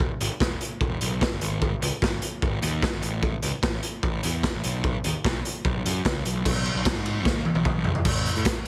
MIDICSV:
0, 0, Header, 1, 3, 480
1, 0, Start_track
1, 0, Tempo, 402685
1, 12, Time_signature, 4, 2, 24, 8
1, 10342, End_track
2, 0, Start_track
2, 0, Title_t, "Picked electric bass"
2, 0, Program_c, 0, 34
2, 247, Note_on_c, 0, 32, 97
2, 341, Note_off_c, 0, 32, 0
2, 480, Note_on_c, 0, 28, 83
2, 669, Note_off_c, 0, 28, 0
2, 962, Note_on_c, 0, 28, 83
2, 1150, Note_off_c, 0, 28, 0
2, 1215, Note_on_c, 0, 35, 80
2, 1490, Note_off_c, 0, 35, 0
2, 1575, Note_on_c, 0, 31, 75
2, 1666, Note_off_c, 0, 31, 0
2, 1689, Note_on_c, 0, 32, 96
2, 2059, Note_off_c, 0, 32, 0
2, 2163, Note_on_c, 0, 37, 92
2, 2259, Note_off_c, 0, 37, 0
2, 2407, Note_on_c, 0, 32, 86
2, 2593, Note_off_c, 0, 32, 0
2, 2890, Note_on_c, 0, 32, 88
2, 3075, Note_off_c, 0, 32, 0
2, 3116, Note_on_c, 0, 39, 84
2, 3399, Note_off_c, 0, 39, 0
2, 3489, Note_on_c, 0, 32, 80
2, 3582, Note_off_c, 0, 32, 0
2, 3600, Note_on_c, 0, 33, 94
2, 3974, Note_off_c, 0, 33, 0
2, 4083, Note_on_c, 0, 37, 96
2, 4178, Note_off_c, 0, 37, 0
2, 4326, Note_on_c, 0, 33, 95
2, 4513, Note_off_c, 0, 33, 0
2, 4808, Note_on_c, 0, 33, 91
2, 4994, Note_off_c, 0, 33, 0
2, 5061, Note_on_c, 0, 40, 93
2, 5335, Note_off_c, 0, 40, 0
2, 5424, Note_on_c, 0, 33, 83
2, 5512, Note_off_c, 0, 33, 0
2, 5539, Note_on_c, 0, 35, 98
2, 5906, Note_off_c, 0, 35, 0
2, 6025, Note_on_c, 0, 39, 100
2, 6113, Note_off_c, 0, 39, 0
2, 6252, Note_on_c, 0, 35, 99
2, 6437, Note_off_c, 0, 35, 0
2, 6739, Note_on_c, 0, 35, 85
2, 6921, Note_off_c, 0, 35, 0
2, 6979, Note_on_c, 0, 42, 94
2, 7162, Note_off_c, 0, 42, 0
2, 7217, Note_on_c, 0, 37, 92
2, 7432, Note_off_c, 0, 37, 0
2, 7453, Note_on_c, 0, 35, 83
2, 7669, Note_off_c, 0, 35, 0
2, 7695, Note_on_c, 0, 35, 100
2, 7971, Note_off_c, 0, 35, 0
2, 8041, Note_on_c, 0, 35, 101
2, 8138, Note_off_c, 0, 35, 0
2, 8171, Note_on_c, 0, 35, 86
2, 8264, Note_off_c, 0, 35, 0
2, 8299, Note_on_c, 0, 44, 85
2, 8645, Note_off_c, 0, 44, 0
2, 8645, Note_on_c, 0, 39, 83
2, 8833, Note_off_c, 0, 39, 0
2, 8996, Note_on_c, 0, 35, 93
2, 9187, Note_off_c, 0, 35, 0
2, 9239, Note_on_c, 0, 35, 90
2, 9429, Note_off_c, 0, 35, 0
2, 9597, Note_on_c, 0, 33, 99
2, 9879, Note_off_c, 0, 33, 0
2, 9967, Note_on_c, 0, 45, 95
2, 10153, Note_off_c, 0, 45, 0
2, 10342, End_track
3, 0, Start_track
3, 0, Title_t, "Drums"
3, 245, Note_on_c, 9, 42, 92
3, 364, Note_off_c, 9, 42, 0
3, 481, Note_on_c, 9, 36, 115
3, 496, Note_on_c, 9, 38, 103
3, 601, Note_off_c, 9, 36, 0
3, 615, Note_off_c, 9, 38, 0
3, 725, Note_on_c, 9, 42, 81
3, 844, Note_off_c, 9, 42, 0
3, 962, Note_on_c, 9, 36, 106
3, 1082, Note_off_c, 9, 36, 0
3, 1203, Note_on_c, 9, 42, 86
3, 1322, Note_off_c, 9, 42, 0
3, 1446, Note_on_c, 9, 36, 103
3, 1462, Note_on_c, 9, 38, 98
3, 1565, Note_off_c, 9, 36, 0
3, 1582, Note_off_c, 9, 38, 0
3, 1684, Note_on_c, 9, 42, 86
3, 1803, Note_off_c, 9, 42, 0
3, 1928, Note_on_c, 9, 36, 108
3, 2047, Note_off_c, 9, 36, 0
3, 2173, Note_on_c, 9, 42, 101
3, 2292, Note_off_c, 9, 42, 0
3, 2409, Note_on_c, 9, 36, 114
3, 2429, Note_on_c, 9, 38, 115
3, 2528, Note_off_c, 9, 36, 0
3, 2549, Note_off_c, 9, 38, 0
3, 2644, Note_on_c, 9, 42, 79
3, 2764, Note_off_c, 9, 42, 0
3, 2888, Note_on_c, 9, 36, 114
3, 3007, Note_off_c, 9, 36, 0
3, 3127, Note_on_c, 9, 42, 90
3, 3247, Note_off_c, 9, 42, 0
3, 3367, Note_on_c, 9, 36, 109
3, 3384, Note_on_c, 9, 38, 101
3, 3486, Note_off_c, 9, 36, 0
3, 3503, Note_off_c, 9, 38, 0
3, 3605, Note_on_c, 9, 42, 76
3, 3724, Note_off_c, 9, 42, 0
3, 3846, Note_on_c, 9, 36, 102
3, 3965, Note_off_c, 9, 36, 0
3, 4082, Note_on_c, 9, 42, 88
3, 4201, Note_off_c, 9, 42, 0
3, 4324, Note_on_c, 9, 36, 121
3, 4332, Note_on_c, 9, 38, 116
3, 4443, Note_off_c, 9, 36, 0
3, 4451, Note_off_c, 9, 38, 0
3, 4561, Note_on_c, 9, 42, 81
3, 4681, Note_off_c, 9, 42, 0
3, 4804, Note_on_c, 9, 36, 106
3, 4924, Note_off_c, 9, 36, 0
3, 5043, Note_on_c, 9, 42, 92
3, 5162, Note_off_c, 9, 42, 0
3, 5285, Note_on_c, 9, 36, 101
3, 5292, Note_on_c, 9, 38, 105
3, 5404, Note_off_c, 9, 36, 0
3, 5411, Note_off_c, 9, 38, 0
3, 5526, Note_on_c, 9, 42, 92
3, 5646, Note_off_c, 9, 42, 0
3, 5769, Note_on_c, 9, 36, 114
3, 5888, Note_off_c, 9, 36, 0
3, 6009, Note_on_c, 9, 42, 93
3, 6128, Note_off_c, 9, 42, 0
3, 6252, Note_on_c, 9, 36, 116
3, 6273, Note_on_c, 9, 38, 115
3, 6371, Note_off_c, 9, 36, 0
3, 6392, Note_off_c, 9, 38, 0
3, 6498, Note_on_c, 9, 42, 86
3, 6618, Note_off_c, 9, 42, 0
3, 6733, Note_on_c, 9, 36, 118
3, 6852, Note_off_c, 9, 36, 0
3, 6981, Note_on_c, 9, 42, 93
3, 7100, Note_off_c, 9, 42, 0
3, 7212, Note_on_c, 9, 36, 101
3, 7224, Note_on_c, 9, 38, 110
3, 7331, Note_off_c, 9, 36, 0
3, 7343, Note_off_c, 9, 38, 0
3, 7454, Note_on_c, 9, 42, 86
3, 7573, Note_off_c, 9, 42, 0
3, 7693, Note_on_c, 9, 36, 102
3, 7694, Note_on_c, 9, 49, 114
3, 7812, Note_off_c, 9, 36, 0
3, 7813, Note_off_c, 9, 49, 0
3, 7932, Note_on_c, 9, 51, 68
3, 8052, Note_off_c, 9, 51, 0
3, 8169, Note_on_c, 9, 36, 119
3, 8169, Note_on_c, 9, 51, 104
3, 8184, Note_on_c, 9, 38, 120
3, 8289, Note_off_c, 9, 36, 0
3, 8289, Note_off_c, 9, 51, 0
3, 8303, Note_off_c, 9, 38, 0
3, 8411, Note_on_c, 9, 51, 69
3, 8530, Note_off_c, 9, 51, 0
3, 8646, Note_on_c, 9, 36, 119
3, 8661, Note_on_c, 9, 38, 72
3, 8765, Note_off_c, 9, 36, 0
3, 8780, Note_off_c, 9, 38, 0
3, 8884, Note_on_c, 9, 48, 70
3, 9001, Note_off_c, 9, 48, 0
3, 9001, Note_on_c, 9, 48, 72
3, 9120, Note_off_c, 9, 48, 0
3, 9121, Note_on_c, 9, 47, 91
3, 9122, Note_on_c, 9, 36, 109
3, 9240, Note_off_c, 9, 47, 0
3, 9241, Note_off_c, 9, 36, 0
3, 9349, Note_on_c, 9, 43, 98
3, 9468, Note_off_c, 9, 43, 0
3, 9476, Note_on_c, 9, 43, 101
3, 9593, Note_on_c, 9, 49, 118
3, 9595, Note_off_c, 9, 43, 0
3, 9598, Note_on_c, 9, 36, 103
3, 9712, Note_off_c, 9, 49, 0
3, 9717, Note_off_c, 9, 36, 0
3, 9718, Note_on_c, 9, 42, 48
3, 9838, Note_off_c, 9, 42, 0
3, 9843, Note_on_c, 9, 42, 85
3, 9957, Note_off_c, 9, 42, 0
3, 9957, Note_on_c, 9, 42, 46
3, 10072, Note_off_c, 9, 42, 0
3, 10072, Note_on_c, 9, 42, 108
3, 10076, Note_on_c, 9, 36, 124
3, 10086, Note_on_c, 9, 38, 117
3, 10191, Note_off_c, 9, 42, 0
3, 10195, Note_off_c, 9, 36, 0
3, 10206, Note_off_c, 9, 38, 0
3, 10342, End_track
0, 0, End_of_file